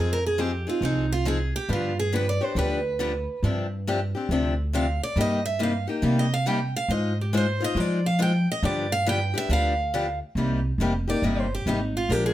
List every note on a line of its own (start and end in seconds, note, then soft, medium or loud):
0.00 0.64 F2 medium
0.00 0.17 F3 medium
0.00 0.17 C4 medium
0.00 0.18 D#4 medium
0.00 0.11 G#4 medium
0.00 0.18 G#4 medium
0.13 0.25 A#4 medium
0.27 0.41 G#4 medium
0.38 0.50 F3 medium
0.38 0.50 C4 medium
0.38 0.51 D#4 medium
0.38 0.67 G4 medium
0.38 0.51 G#4 medium
0.67 0.82 C4 soft
0.67 0.82 D#4 medium
0.67 0.83 F4 medium
0.67 0.82 G#4 medium
0.81 1.51 C2 medium
0.81 1.04 F3 medium
0.81 1.05 C4 medium
0.81 1.05 D#4 medium
0.81 1.11 D#4 medium
0.81 1.05 G#4 medium
1.12 1.26 F4 medium
1.25 1.37 F3 medium
1.25 1.37 C4 medium
1.25 1.38 D#4 medium
1.25 1.38 G#4 medium
1.25 1.54 G#4 medium
1.56 1.70 G4 medium
1.69 2.38 G2 loud
1.69 1.91 D3 medium
1.69 1.91 F3 medium
1.69 1.91 B3 medium
1.69 1.92 D4 medium
1.69 1.92 G4 medium
1.73 1.98 F4 medium
1.99 2.13 G#4 medium
2.13 2.24 D3 medium
2.13 2.24 F3 medium
2.13 2.25 B3 medium
2.13 2.25 D4 medium
2.13 2.25 G4 loud
2.13 2.28 B4 medium
2.29 2.44 D5 medium
2.41 2.56 B3 soft
2.41 2.56 D4 medium
2.41 2.56 G4 medium
2.41 2.57 C5 medium
2.55 3.25 D2 medium
2.55 2.78 D3 medium
2.55 2.78 F3 medium
2.55 2.78 B3 medium
2.55 2.79 D4 medium
2.55 2.79 G4 medium
2.55 3.40 B4 medium
2.99 3.11 D3 medium
2.99 3.11 F3 medium
2.99 3.12 B3 medium
2.99 3.12 D4 medium
2.99 3.12 G4 medium
3.43 4.12 G2 medium
3.43 3.65 C3 medium
3.43 3.65 F3 medium
3.43 3.66 C4 medium
3.43 3.66 D4 medium
3.43 3.66 G4 medium
3.87 3.99 C3 medium
3.87 3.99 F3 medium
3.87 3.99 C4 medium
3.87 3.99 D4 loud
3.87 3.99 G4 loud
4.15 4.30 C4 soft
4.15 4.30 D4 soft
4.15 4.29 G4 medium
4.29 4.99 D2 medium
4.29 4.52 C3 medium
4.29 4.53 F3 medium
4.29 4.53 C4 medium
4.29 4.53 D4 medium
4.29 4.53 G4 medium
4.73 4.85 C3 medium
4.73 4.85 F3 medium
4.73 4.85 C4 medium
4.73 4.86 D4 medium
4.73 4.86 G4 medium
4.73 5.01 F5 medium
5.03 5.17 D5 loud
5.16 5.86 G2 medium
5.16 5.38 C3 medium
5.16 5.39 G3 medium
5.16 5.39 A#3 medium
5.16 5.39 D#4 medium
5.16 5.39 G4 medium
5.21 5.45 D#5 medium
5.46 5.60 E5 medium
5.59 5.71 C3 medium
5.59 5.71 G3 medium
5.59 5.72 A#3 medium
5.59 5.72 D#4 loud
5.59 5.72 G4 loud
5.63 5.89 F5 medium
5.87 6.02 A#3 soft
5.87 6.02 D#4 medium
5.87 6.02 G4 medium
5.87 6.05 G5 medium
6.02 6.25 C3 medium
6.02 6.72 C3 medium
6.02 6.25 G3 medium
6.02 6.25 A#3 medium
6.02 6.25 D#4 medium
6.02 6.25 G4 medium
6.02 6.18 F5 medium
6.19 6.33 D#5 medium
6.34 6.48 F5 medium
6.46 6.58 C3 medium
6.46 6.58 G3 medium
6.46 6.58 A#3 loud
6.46 6.59 D#4 medium
6.46 6.59 G4 loud
6.46 6.75 G5 medium
6.76 6.91 F5 medium
6.88 7.58 G#2 medium
6.88 7.12 G#3 medium
6.88 7.12 D#4 medium
6.88 7.12 F4 medium
6.88 7.13 C5 medium
6.88 7.17 D#5 medium
7.21 7.35 G4 soft
7.33 7.45 G#3 medium
7.33 7.45 D#4 medium
7.33 7.46 F4 medium
7.33 7.46 C5 loud
7.37 7.62 C5 medium
7.60 7.76 D#4 soft
7.60 7.76 F4 medium
7.60 7.76 C5 medium
7.60 7.80 D#5 loud
7.75 8.45 F3 medium
7.75 7.99 G#3 medium
7.75 7.99 D#4 medium
7.75 7.99 F4 medium
7.75 7.99 C5 medium
7.80 8.05 D5 medium
8.06 8.21 F5 medium
8.19 8.31 G#3 medium
8.19 8.31 D#4 medium
8.19 8.32 F4 medium
8.19 8.32 C5 loud
8.19 8.48 G5 medium
8.52 8.65 D#5 loud
8.63 9.32 G2 loud
8.63 8.85 D3 medium
8.63 8.85 F3 medium
8.63 8.86 B3 medium
8.63 8.86 D4 medium
8.63 8.86 G4 medium
8.63 8.91 D5 medium
8.92 9.07 F5 loud
9.06 9.18 D3 loud
9.06 9.18 F3 medium
9.06 9.18 B3 medium
9.06 9.19 D4 loud
9.06 9.19 G4 medium
9.06 9.35 G5 loud
9.34 9.50 B3 medium
9.34 9.50 D4 medium
9.34 9.49 G4 medium
9.34 9.51 E5 loud
9.49 10.19 D2 medium
9.49 9.72 D3 medium
9.49 9.72 F3 medium
9.49 9.72 B3 medium
9.49 9.72 D4 medium
9.49 9.72 G4 medium
9.49 10.19 F5 medium
9.94 10.05 D3 medium
9.94 10.05 F3 medium
9.94 10.05 B3 loud
9.94 10.06 D4 medium
9.94 10.06 G4 loud
10.35 10.70 C2 medium
10.35 10.59 C3 medium
10.35 10.59 G3 medium
10.35 10.59 A#3 medium
10.35 10.59 D#4 medium
10.35 10.59 G4 medium
10.78 11.16 F1 medium
10.78 10.92 C3 medium
10.78 10.92 G3 medium
10.78 10.92 A#3 medium
10.78 10.92 D#4 medium
10.78 10.92 G4 medium
11.08 11.23 A#3 soft
11.08 11.23 D#4 medium
11.08 11.23 G4 medium
11.08 11.25 D5 medium
11.22 11.59 G1 medium
11.22 11.45 C3 medium
11.22 11.46 G3 medium
11.22 11.46 A#3 medium
11.22 11.46 D#4 medium
11.22 11.46 G4 medium
11.22 11.39 D#5 loud
11.39 11.52 C5 medium
11.55 11.67 G4 medium
11.66 12.03 G#1 medium
11.66 11.78 C3 medium
11.66 11.79 G3 medium
11.66 11.79 A#3 medium
11.66 11.79 D#4 medium
11.66 11.95 D#4 medium
11.66 11.79 G4 medium
11.97 12.12 F4 medium
12.09 12.34 A#1 medium
12.09 12.32 F3 medium
12.09 12.32 G#3 medium
12.09 12.32 D4 medium
12.09 12.32 F4 medium
12.09 12.25 G4 medium
12.09 12.32 A#4 medium
12.26 12.34 G#4 medium